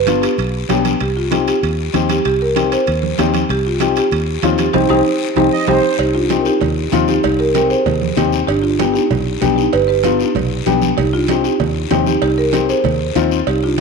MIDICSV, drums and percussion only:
0, 0, Header, 1, 2, 480
1, 0, Start_track
1, 0, Key_signature, -3, "minor"
1, 0, Tempo, 311688
1, 1549, Time_signature, 4, 2, 24, 8
1, 21255, End_track
2, 0, Start_track
2, 0, Title_t, "Drums"
2, 105, Note_on_c, 9, 63, 89
2, 117, Note_on_c, 9, 65, 68
2, 117, Note_on_c, 9, 73, 68
2, 259, Note_off_c, 9, 63, 0
2, 271, Note_off_c, 9, 65, 0
2, 271, Note_off_c, 9, 73, 0
2, 353, Note_on_c, 9, 73, 65
2, 359, Note_on_c, 9, 65, 67
2, 507, Note_off_c, 9, 73, 0
2, 513, Note_off_c, 9, 65, 0
2, 584, Note_on_c, 9, 63, 34
2, 592, Note_on_c, 9, 74, 68
2, 602, Note_on_c, 9, 65, 65
2, 738, Note_off_c, 9, 63, 0
2, 746, Note_off_c, 9, 74, 0
2, 756, Note_off_c, 9, 65, 0
2, 1061, Note_on_c, 9, 63, 77
2, 1072, Note_on_c, 9, 73, 58
2, 1074, Note_on_c, 9, 65, 69
2, 1074, Note_on_c, 9, 66, 69
2, 1215, Note_off_c, 9, 63, 0
2, 1226, Note_off_c, 9, 73, 0
2, 1228, Note_off_c, 9, 65, 0
2, 1228, Note_off_c, 9, 66, 0
2, 1308, Note_on_c, 9, 63, 71
2, 1308, Note_on_c, 9, 65, 67
2, 1308, Note_on_c, 9, 73, 72
2, 1462, Note_off_c, 9, 63, 0
2, 1462, Note_off_c, 9, 65, 0
2, 1462, Note_off_c, 9, 73, 0
2, 1547, Note_on_c, 9, 65, 65
2, 1553, Note_on_c, 9, 63, 32
2, 1558, Note_on_c, 9, 74, 63
2, 1701, Note_off_c, 9, 65, 0
2, 1707, Note_off_c, 9, 63, 0
2, 1712, Note_off_c, 9, 74, 0
2, 2027, Note_on_c, 9, 63, 88
2, 2033, Note_on_c, 9, 65, 69
2, 2033, Note_on_c, 9, 73, 68
2, 2181, Note_off_c, 9, 63, 0
2, 2187, Note_off_c, 9, 65, 0
2, 2187, Note_off_c, 9, 73, 0
2, 2272, Note_on_c, 9, 73, 65
2, 2275, Note_on_c, 9, 65, 65
2, 2426, Note_off_c, 9, 73, 0
2, 2429, Note_off_c, 9, 65, 0
2, 2504, Note_on_c, 9, 63, 32
2, 2515, Note_on_c, 9, 74, 67
2, 2519, Note_on_c, 9, 65, 68
2, 2658, Note_off_c, 9, 63, 0
2, 2669, Note_off_c, 9, 74, 0
2, 2673, Note_off_c, 9, 65, 0
2, 2984, Note_on_c, 9, 63, 77
2, 2989, Note_on_c, 9, 65, 69
2, 2992, Note_on_c, 9, 73, 63
2, 3138, Note_off_c, 9, 63, 0
2, 3143, Note_off_c, 9, 65, 0
2, 3146, Note_off_c, 9, 73, 0
2, 3220, Note_on_c, 9, 63, 69
2, 3227, Note_on_c, 9, 65, 73
2, 3238, Note_on_c, 9, 73, 72
2, 3374, Note_off_c, 9, 63, 0
2, 3381, Note_off_c, 9, 65, 0
2, 3392, Note_off_c, 9, 73, 0
2, 3461, Note_on_c, 9, 63, 34
2, 3468, Note_on_c, 9, 65, 63
2, 3473, Note_on_c, 9, 74, 64
2, 3615, Note_off_c, 9, 63, 0
2, 3622, Note_off_c, 9, 65, 0
2, 3627, Note_off_c, 9, 74, 0
2, 3943, Note_on_c, 9, 63, 89
2, 3949, Note_on_c, 9, 73, 70
2, 3953, Note_on_c, 9, 65, 72
2, 4097, Note_off_c, 9, 63, 0
2, 4103, Note_off_c, 9, 73, 0
2, 4107, Note_off_c, 9, 65, 0
2, 4189, Note_on_c, 9, 65, 66
2, 4195, Note_on_c, 9, 73, 66
2, 4343, Note_off_c, 9, 65, 0
2, 4349, Note_off_c, 9, 73, 0
2, 4420, Note_on_c, 9, 74, 64
2, 4421, Note_on_c, 9, 63, 34
2, 4426, Note_on_c, 9, 65, 65
2, 4574, Note_off_c, 9, 74, 0
2, 4575, Note_off_c, 9, 63, 0
2, 4580, Note_off_c, 9, 65, 0
2, 4666, Note_on_c, 9, 63, 68
2, 4820, Note_off_c, 9, 63, 0
2, 4898, Note_on_c, 9, 63, 77
2, 4898, Note_on_c, 9, 73, 61
2, 4911, Note_on_c, 9, 65, 70
2, 4911, Note_on_c, 9, 66, 74
2, 5052, Note_off_c, 9, 63, 0
2, 5052, Note_off_c, 9, 73, 0
2, 5065, Note_off_c, 9, 65, 0
2, 5065, Note_off_c, 9, 66, 0
2, 5137, Note_on_c, 9, 63, 72
2, 5139, Note_on_c, 9, 73, 73
2, 5150, Note_on_c, 9, 65, 66
2, 5291, Note_off_c, 9, 63, 0
2, 5293, Note_off_c, 9, 73, 0
2, 5304, Note_off_c, 9, 65, 0
2, 5378, Note_on_c, 9, 63, 34
2, 5381, Note_on_c, 9, 74, 68
2, 5394, Note_on_c, 9, 65, 64
2, 5532, Note_off_c, 9, 63, 0
2, 5535, Note_off_c, 9, 74, 0
2, 5548, Note_off_c, 9, 65, 0
2, 5854, Note_on_c, 9, 63, 90
2, 5855, Note_on_c, 9, 73, 69
2, 5872, Note_on_c, 9, 65, 70
2, 6008, Note_off_c, 9, 63, 0
2, 6009, Note_off_c, 9, 73, 0
2, 6026, Note_off_c, 9, 65, 0
2, 6095, Note_on_c, 9, 73, 68
2, 6112, Note_on_c, 9, 65, 67
2, 6249, Note_off_c, 9, 73, 0
2, 6266, Note_off_c, 9, 65, 0
2, 6337, Note_on_c, 9, 74, 66
2, 6339, Note_on_c, 9, 63, 33
2, 6351, Note_on_c, 9, 65, 66
2, 6491, Note_off_c, 9, 74, 0
2, 6493, Note_off_c, 9, 63, 0
2, 6505, Note_off_c, 9, 65, 0
2, 6813, Note_on_c, 9, 73, 63
2, 6816, Note_on_c, 9, 63, 79
2, 6823, Note_on_c, 9, 65, 70
2, 6823, Note_on_c, 9, 66, 69
2, 6967, Note_off_c, 9, 73, 0
2, 6970, Note_off_c, 9, 63, 0
2, 6977, Note_off_c, 9, 65, 0
2, 6977, Note_off_c, 9, 66, 0
2, 7051, Note_on_c, 9, 73, 68
2, 7057, Note_on_c, 9, 63, 73
2, 7066, Note_on_c, 9, 65, 69
2, 7205, Note_off_c, 9, 73, 0
2, 7211, Note_off_c, 9, 63, 0
2, 7220, Note_off_c, 9, 65, 0
2, 7295, Note_on_c, 9, 63, 102
2, 7301, Note_on_c, 9, 65, 93
2, 7301, Note_on_c, 9, 74, 98
2, 7449, Note_off_c, 9, 63, 0
2, 7455, Note_off_c, 9, 65, 0
2, 7455, Note_off_c, 9, 74, 0
2, 7534, Note_on_c, 9, 74, 93
2, 7537, Note_on_c, 9, 63, 86
2, 7539, Note_on_c, 9, 65, 87
2, 7688, Note_off_c, 9, 74, 0
2, 7691, Note_off_c, 9, 63, 0
2, 7693, Note_off_c, 9, 65, 0
2, 8253, Note_on_c, 9, 74, 91
2, 8257, Note_on_c, 9, 63, 94
2, 8265, Note_on_c, 9, 65, 90
2, 8407, Note_off_c, 9, 74, 0
2, 8411, Note_off_c, 9, 63, 0
2, 8419, Note_off_c, 9, 65, 0
2, 8732, Note_on_c, 9, 74, 90
2, 8738, Note_on_c, 9, 63, 94
2, 8748, Note_on_c, 9, 65, 92
2, 8886, Note_off_c, 9, 74, 0
2, 8892, Note_off_c, 9, 63, 0
2, 8902, Note_off_c, 9, 65, 0
2, 9217, Note_on_c, 9, 74, 69
2, 9224, Note_on_c, 9, 63, 36
2, 9226, Note_on_c, 9, 56, 104
2, 9371, Note_off_c, 9, 74, 0
2, 9378, Note_off_c, 9, 63, 0
2, 9380, Note_off_c, 9, 56, 0
2, 9690, Note_on_c, 9, 73, 69
2, 9702, Note_on_c, 9, 63, 87
2, 9706, Note_on_c, 9, 56, 70
2, 9844, Note_off_c, 9, 73, 0
2, 9856, Note_off_c, 9, 63, 0
2, 9860, Note_off_c, 9, 56, 0
2, 9937, Note_on_c, 9, 73, 65
2, 10091, Note_off_c, 9, 73, 0
2, 10174, Note_on_c, 9, 74, 67
2, 10181, Note_on_c, 9, 63, 33
2, 10181, Note_on_c, 9, 64, 79
2, 10185, Note_on_c, 9, 56, 84
2, 10328, Note_off_c, 9, 74, 0
2, 10335, Note_off_c, 9, 63, 0
2, 10335, Note_off_c, 9, 64, 0
2, 10339, Note_off_c, 9, 56, 0
2, 10657, Note_on_c, 9, 73, 63
2, 10662, Note_on_c, 9, 63, 82
2, 10662, Note_on_c, 9, 64, 65
2, 10671, Note_on_c, 9, 56, 70
2, 10811, Note_off_c, 9, 73, 0
2, 10816, Note_off_c, 9, 63, 0
2, 10816, Note_off_c, 9, 64, 0
2, 10825, Note_off_c, 9, 56, 0
2, 10902, Note_on_c, 9, 73, 72
2, 10905, Note_on_c, 9, 63, 73
2, 11056, Note_off_c, 9, 73, 0
2, 11059, Note_off_c, 9, 63, 0
2, 11141, Note_on_c, 9, 74, 66
2, 11147, Note_on_c, 9, 63, 35
2, 11147, Note_on_c, 9, 64, 74
2, 11149, Note_on_c, 9, 56, 99
2, 11295, Note_off_c, 9, 74, 0
2, 11301, Note_off_c, 9, 63, 0
2, 11301, Note_off_c, 9, 64, 0
2, 11303, Note_off_c, 9, 56, 0
2, 11622, Note_on_c, 9, 73, 66
2, 11623, Note_on_c, 9, 63, 85
2, 11624, Note_on_c, 9, 56, 65
2, 11776, Note_off_c, 9, 73, 0
2, 11777, Note_off_c, 9, 63, 0
2, 11778, Note_off_c, 9, 56, 0
2, 11862, Note_on_c, 9, 73, 71
2, 12016, Note_off_c, 9, 73, 0
2, 12104, Note_on_c, 9, 74, 68
2, 12107, Note_on_c, 9, 56, 84
2, 12110, Note_on_c, 9, 63, 32
2, 12110, Note_on_c, 9, 64, 78
2, 12258, Note_off_c, 9, 74, 0
2, 12261, Note_off_c, 9, 56, 0
2, 12264, Note_off_c, 9, 63, 0
2, 12264, Note_off_c, 9, 64, 0
2, 12350, Note_on_c, 9, 63, 70
2, 12504, Note_off_c, 9, 63, 0
2, 12577, Note_on_c, 9, 73, 64
2, 12584, Note_on_c, 9, 63, 76
2, 12584, Note_on_c, 9, 64, 67
2, 12588, Note_on_c, 9, 56, 72
2, 12588, Note_on_c, 9, 66, 69
2, 12731, Note_off_c, 9, 73, 0
2, 12738, Note_off_c, 9, 63, 0
2, 12738, Note_off_c, 9, 64, 0
2, 12742, Note_off_c, 9, 56, 0
2, 12742, Note_off_c, 9, 66, 0
2, 12819, Note_on_c, 9, 73, 71
2, 12973, Note_off_c, 9, 73, 0
2, 13062, Note_on_c, 9, 74, 65
2, 13065, Note_on_c, 9, 63, 34
2, 13067, Note_on_c, 9, 56, 99
2, 13216, Note_off_c, 9, 74, 0
2, 13219, Note_off_c, 9, 63, 0
2, 13221, Note_off_c, 9, 56, 0
2, 13543, Note_on_c, 9, 73, 68
2, 13544, Note_on_c, 9, 56, 68
2, 13545, Note_on_c, 9, 63, 95
2, 13697, Note_off_c, 9, 73, 0
2, 13698, Note_off_c, 9, 56, 0
2, 13699, Note_off_c, 9, 63, 0
2, 13788, Note_on_c, 9, 73, 65
2, 13942, Note_off_c, 9, 73, 0
2, 14024, Note_on_c, 9, 56, 83
2, 14027, Note_on_c, 9, 74, 67
2, 14028, Note_on_c, 9, 63, 34
2, 14028, Note_on_c, 9, 64, 82
2, 14178, Note_off_c, 9, 56, 0
2, 14181, Note_off_c, 9, 74, 0
2, 14182, Note_off_c, 9, 63, 0
2, 14182, Note_off_c, 9, 64, 0
2, 14502, Note_on_c, 9, 56, 67
2, 14502, Note_on_c, 9, 63, 79
2, 14502, Note_on_c, 9, 64, 64
2, 14503, Note_on_c, 9, 73, 65
2, 14656, Note_off_c, 9, 56, 0
2, 14656, Note_off_c, 9, 63, 0
2, 14656, Note_off_c, 9, 64, 0
2, 14657, Note_off_c, 9, 73, 0
2, 14752, Note_on_c, 9, 73, 74
2, 14906, Note_off_c, 9, 73, 0
2, 14981, Note_on_c, 9, 63, 35
2, 14984, Note_on_c, 9, 56, 95
2, 14993, Note_on_c, 9, 74, 65
2, 15135, Note_off_c, 9, 63, 0
2, 15138, Note_off_c, 9, 56, 0
2, 15147, Note_off_c, 9, 74, 0
2, 15453, Note_on_c, 9, 63, 91
2, 15463, Note_on_c, 9, 73, 65
2, 15466, Note_on_c, 9, 56, 69
2, 15607, Note_off_c, 9, 63, 0
2, 15617, Note_off_c, 9, 73, 0
2, 15620, Note_off_c, 9, 56, 0
2, 15705, Note_on_c, 9, 73, 67
2, 15859, Note_off_c, 9, 73, 0
2, 15937, Note_on_c, 9, 63, 35
2, 15937, Note_on_c, 9, 64, 80
2, 15941, Note_on_c, 9, 74, 70
2, 15951, Note_on_c, 9, 56, 80
2, 16091, Note_off_c, 9, 63, 0
2, 16091, Note_off_c, 9, 64, 0
2, 16095, Note_off_c, 9, 74, 0
2, 16105, Note_off_c, 9, 56, 0
2, 16420, Note_on_c, 9, 73, 60
2, 16422, Note_on_c, 9, 63, 78
2, 16424, Note_on_c, 9, 56, 65
2, 16574, Note_off_c, 9, 73, 0
2, 16576, Note_off_c, 9, 63, 0
2, 16578, Note_off_c, 9, 56, 0
2, 16657, Note_on_c, 9, 73, 72
2, 16665, Note_on_c, 9, 63, 72
2, 16811, Note_off_c, 9, 73, 0
2, 16819, Note_off_c, 9, 63, 0
2, 16902, Note_on_c, 9, 63, 35
2, 16902, Note_on_c, 9, 64, 76
2, 16902, Note_on_c, 9, 74, 66
2, 16904, Note_on_c, 9, 56, 100
2, 17056, Note_off_c, 9, 63, 0
2, 17056, Note_off_c, 9, 64, 0
2, 17056, Note_off_c, 9, 74, 0
2, 17058, Note_off_c, 9, 56, 0
2, 17377, Note_on_c, 9, 63, 89
2, 17381, Note_on_c, 9, 73, 68
2, 17387, Note_on_c, 9, 56, 72
2, 17531, Note_off_c, 9, 63, 0
2, 17535, Note_off_c, 9, 73, 0
2, 17541, Note_off_c, 9, 56, 0
2, 17624, Note_on_c, 9, 73, 64
2, 17778, Note_off_c, 9, 73, 0
2, 17860, Note_on_c, 9, 74, 68
2, 17862, Note_on_c, 9, 63, 34
2, 17862, Note_on_c, 9, 64, 83
2, 17863, Note_on_c, 9, 56, 81
2, 18014, Note_off_c, 9, 74, 0
2, 18016, Note_off_c, 9, 63, 0
2, 18016, Note_off_c, 9, 64, 0
2, 18017, Note_off_c, 9, 56, 0
2, 18337, Note_on_c, 9, 73, 64
2, 18339, Note_on_c, 9, 56, 68
2, 18339, Note_on_c, 9, 63, 84
2, 18339, Note_on_c, 9, 64, 70
2, 18339, Note_on_c, 9, 66, 67
2, 18491, Note_off_c, 9, 73, 0
2, 18493, Note_off_c, 9, 56, 0
2, 18493, Note_off_c, 9, 63, 0
2, 18493, Note_off_c, 9, 64, 0
2, 18493, Note_off_c, 9, 66, 0
2, 18579, Note_on_c, 9, 63, 69
2, 18580, Note_on_c, 9, 73, 75
2, 18733, Note_off_c, 9, 63, 0
2, 18734, Note_off_c, 9, 73, 0
2, 18814, Note_on_c, 9, 56, 102
2, 18818, Note_on_c, 9, 63, 34
2, 18822, Note_on_c, 9, 74, 66
2, 18968, Note_off_c, 9, 56, 0
2, 18972, Note_off_c, 9, 63, 0
2, 18976, Note_off_c, 9, 74, 0
2, 19295, Note_on_c, 9, 63, 90
2, 19304, Note_on_c, 9, 56, 73
2, 19304, Note_on_c, 9, 73, 70
2, 19449, Note_off_c, 9, 63, 0
2, 19458, Note_off_c, 9, 56, 0
2, 19458, Note_off_c, 9, 73, 0
2, 19546, Note_on_c, 9, 73, 68
2, 19700, Note_off_c, 9, 73, 0
2, 19773, Note_on_c, 9, 63, 34
2, 19773, Note_on_c, 9, 64, 79
2, 19782, Note_on_c, 9, 74, 68
2, 19785, Note_on_c, 9, 56, 84
2, 19927, Note_off_c, 9, 63, 0
2, 19927, Note_off_c, 9, 64, 0
2, 19936, Note_off_c, 9, 74, 0
2, 19939, Note_off_c, 9, 56, 0
2, 20255, Note_on_c, 9, 63, 77
2, 20264, Note_on_c, 9, 56, 70
2, 20268, Note_on_c, 9, 73, 67
2, 20409, Note_off_c, 9, 63, 0
2, 20418, Note_off_c, 9, 56, 0
2, 20422, Note_off_c, 9, 73, 0
2, 20503, Note_on_c, 9, 73, 72
2, 20657, Note_off_c, 9, 73, 0
2, 20743, Note_on_c, 9, 56, 99
2, 20743, Note_on_c, 9, 63, 36
2, 20746, Note_on_c, 9, 74, 70
2, 20897, Note_off_c, 9, 56, 0
2, 20897, Note_off_c, 9, 63, 0
2, 20900, Note_off_c, 9, 74, 0
2, 21255, End_track
0, 0, End_of_file